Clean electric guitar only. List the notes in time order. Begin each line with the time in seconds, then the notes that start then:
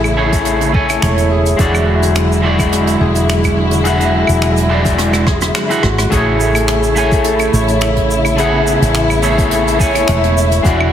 Already playing: A3 E4 G#4 F#5
0.17 A3 E4 G#4 C#5
0.72 A3 E4 C#5 G#5
1.57 G#3 E4 F#4 D5
2.42 G#3 E4 F#4 D5
3.84 G#3 E4 F#4 F#5
4.69 G#3 E4 F#4 D5
5.69 G#3 E4 F#4 F#5
6.10 A3 E4 G#4 C#5
6.96 A3 E4 C#5 G#5
8.37 A3 E4 G#4 F#5
9.22 A3 E4 G#4 C#5
9.78 A3 E4 C#5 G#5
10.63 G#3 E4 F#4 D5